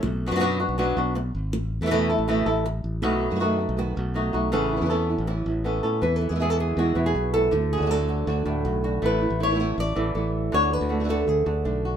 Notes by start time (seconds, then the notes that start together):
0.03 B1, muted nylon-string guitar stroke
0.26 F#3 B3 D4 F#4
0.31 F#2 F#3 B3 D4 F#4
0.36 F#3 B3 D4 F#4
0.40 B2 F#3 B3 D4 F#4
0.60 B3 D4 F#4
0.69 B1
0.78 B2 F#3 B3 D4 F#4
0.97 B1 B3 D4 F#4
1.15 muted nylon-string guitar stroke
1.35 G#1
1.53 A1, muted nylon-string guitar stroke
1.81 E2 E3 A3 E4 A4
1.86 E3 A3 E4 A4
1.90 B2 E3 A3 E4 A4
2.10 A3 E4 A4
2.18 A1
2.28 B2 E3 A3 E4 A4
2.46 A1 A3 E4 A4
2.65 muted nylon-string guitar stroke
2.84 A1
3.02 B1 B2 F#3 A3 D#4 F#4, muted nylon-string guitar stroke
3.21 A3 B3 F#4
3.30 F#2 D#3 A3 B3 F#4
3.35 D#3 A3 B3 F#4
3.40 B2 D#3 A3 B3 D#4 F#4
3.58 A3 B3 F#4
3.69 B1
3.77 B2 D#3 A3 B3 F#4, muted nylon-string guitar stroke
3.96 B1 A3 B3 F#4
4.14 F#3 A3 D#4 F#4, muted nylon-string guitar stroke
4.33 B1 A3 D#4 F#4
4.52 A1 C#3 E3 B3 C#4 A4, muted nylon-string guitar stroke
4.72 B3 C#4 E4
4.77 E3 B3 C#4 E4
4.81 E2 E3 B3 C#4 E4
4.85 E3 B3 C#4 E4
4.90 E3 B3 C#4 E4 A4
5.09 B3 C#4 E4
5.18 A1
5.27 E3 B3 C#4 E4, muted nylon-string guitar stroke
5.46 A1 B3 C#4 E4
5.64 E3 B3 C#4 A4, muted nylon-string guitar stroke
5.83 A2 B3 C#4 A4
6.02 E2 E3 B4, muted nylon-string guitar stroke
6.16 A4
6.21 E4
6.29 E2 E3 G#3 B3 E4 G#4
6.35 E3 G#3 B3 E4
6.40 B2 E3 G#3 B3 E4 G#4
6.50 A4
6.60 G#4
6.77 E2 B2 E3 G#3 B3 E4 F#4
6.95 E2 B2 G#3 B3 E4
7.06 G#4
7.15 B1, muted nylon-string guitar stroke
7.33 G#3 B3 E4 A4
7.51 D2 D3 A3, muted nylon-string guitar stroke
7.73 D3 G#4
7.77 D2 A3 D4 F#4
7.81 D3 A3 D4 F#4
7.86 D3 F#3 A3 D4 F#4
7.91 D3 A3 D4 F#4 A4
8.09 F#4
8.27 D2 D3 A3 D4 F#4
8.45 D2 A2 A3 D4 F#4
8.65 B1 F#4, muted nylon-string guitar stroke
8.83 A3 D4 F#4
9.02 A1 E3 A3 B3 E4 B4
9.21 A3 B3 E4
9.30 A1
9.40 A3 B3 E4 C#5
9.46 E3 A3 B3 E4
9.51 E3 A3 B3 E4
9.55 E3 A3 B3 E4
9.60 E3 A3 B3 E4
9.78 A1 D5, muted nylon-string guitar stroke
9.96 A1 E3 A3 B3 E4 A4
10.15 A1 E3 A3 B3 E4 A4
10.52 D2 D3 A3 D4 F#4 C#5
10.71 A3 D4 F#4 B4
10.81 D2
10.89 A3 D4 F#4
11.00 D3 A3 D4 F#4
11.04 D3 A3 D4 F#4
11.09 D3 A3 D4 F#4 A4
11.27 D2 G#4, muted nylon-string guitar stroke
11.46 D2 D3 A3 D4 F#4
11.64 B1 D3 A3 D4 F#4
11.85 F#4